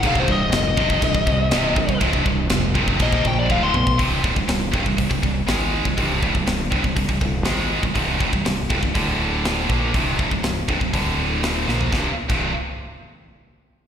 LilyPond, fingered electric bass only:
\new Staff \with { instrumentName = "Fingered electric bass" } { \clef bass \time 4/4 \key c \minor \tempo 4 = 121 c,,8 c,,8 f,,4 c,,8 c,8 c,,8 c,,8 | c,,8 c,,8 f,,4 bes,,8 bes,,8 d,,8 b,,8 | c,,8 d,,16 c,,16 c,,8 c,,16 c,,16 c,,16 c,,16 c,,8 aes,,8. c,,16 | c,,8 d,,16 c,,16 c,,8 c,,16 c,,16 c,,16 c,,16 c,,8 aes,,8. c,,16 |
c,,8 d,,16 c,,16 c,,8 c,,16 c,,16 d,,4. bes,,8 | c,,8 d,,16 c,,16 c,,8 c,,16 c,,16 d,,4. bes,,8 | c,,16 r8 c,,8 r2 r8. | }